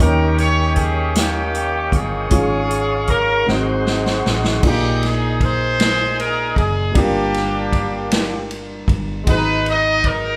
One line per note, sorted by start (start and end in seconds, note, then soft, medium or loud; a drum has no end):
0.00 1.89 D#2 loud
0.00 1.12 D#3 medium
0.00 2.26 A#3 medium
0.00 2.27 C#4 medium
0.00 1.13 C#4 medium
0.00 2.28 D#4 medium
0.00 1.13 G4 medium
0.00 2.28 A#4 medium
0.00 0.36 A#4 loud
0.00 2.30 C#5 medium
0.00 2.28 D#5 medium
0.00 2.30 G5 medium
0.00 2.29 G5 medium
0.00 3.44 C#6 medium
0.00 kick loud
0.37 0.77 C#5 loud
0.37 closed hi-hat medium
0.76 1.13 G#4 medium
0.76 kick medium
0.76 closed hi-hat medium
1.15 2.28 A#3 medium
1.15 1.92 C#4 medium
1.15 1.93 G4 medium
1.15 snare loud
1.15 closed hi-hat medium
1.55 closed hi-hat medium
1.92 2.28 G1 loud
1.92 3.05 C#4 medium
1.92 3.05 F4 medium
1.92 3.09 G#4 loud
1.92 kick medium
1.92 closed hi-hat medium
2.29 3.44 G#1 loud
2.29 3.43 G#2 medium
2.29 3.46 C#4 medium
2.29 3.48 F4 medium
2.29 3.46 G#4 medium
2.29 3.46 C#5 medium
2.29 3.46 F5 medium
2.29 kick loud
2.29 closed hi-hat medium
2.33 3.49 G#4 medium
2.71 closed hi-hat soft
3.07 3.48 A#4 medium
3.07 kick medium
3.07 closed hi-hat medium
3.46 4.21 G#1 medium
3.46 4.59 G#2 medium
3.46 4.59 G#3 medium
3.46 4.63 C4 medium
3.46 4.63 D#4 medium
3.46 4.60 D#4 medium
3.46 4.64 F#4 medium
3.46 4.60 F#4 medium
3.46 4.62 G#4 medium
3.46 4.35 C5 medium
3.46 4.64 C5 medium
3.46 4.62 D#5 medium
3.46 4.62 F#5 medium
3.46 4.62 C6 medium
3.46 snare medium
3.87 snare medium
4.06 snare medium
4.26 4.61 A1 medium
4.26 snare medium
4.44 snare medium
4.60 6.53 A#1 medium
4.60 5.76 A#2 medium
4.60 6.90 G#3 medium
4.60 6.91 A#3 medium
4.60 4.70 D4 soft
4.60 kick loud
4.60 crash medium
4.65 5.40 D#4 medium
4.65 6.92 F4 medium
4.65 5.01 G4 medium
4.65 6.93 A#4 medium
4.70 6.95 D#4 medium
5.03 5.40 G#4 medium
5.03 snare soft
5.03 ride soft
5.41 6.53 D#4 medium
5.41 6.53 G#4 medium
5.41 6.19 C5 loud
5.41 kick medium
5.41 ride soft
5.80 snare loud
5.80 ride medium
6.18 6.54 A#4 medium
6.18 ride soft
6.56 6.92 F#1 loud
6.56 6.95 G#4 medium
6.56 kick medium
6.56 ride soft
6.92 8.84 G1 loud
6.92 8.07 G2 medium
6.92 9.21 G3 medium
6.92 9.22 A#3 medium
6.92 9.23 D4 medium
6.92 8.46 D4 medium
6.92 kick loud
6.92 ride medium
6.96 8.46 A#3 medium
6.96 9.24 F4 medium
6.96 8.50 G4 medium
6.96 9.24 A#4 medium
7.34 snare soft
7.34 ride soft
7.73 kick medium
7.73 ride soft
8.11 snare loud
8.11 ride medium
8.51 ride soft
8.88 9.24 G1 loud
8.88 kick medium
8.88 ride soft
9.24 10.37 G#1 loud
9.24 10.37 G#2 medium
9.24 10.37 B2 medium
9.24 10.37 G#3 medium
9.24 kick loud
9.24 ride medium
9.28 10.37 D#4 medium
9.28 9.35 G#4 medium
9.28 9.65 B4 loud
9.37 10.37 A#5 medium
9.66 10.06 D#5 loud
9.66 ride soft
10.04 10.37 A#4 loud
10.04 kick medium
10.04 ride soft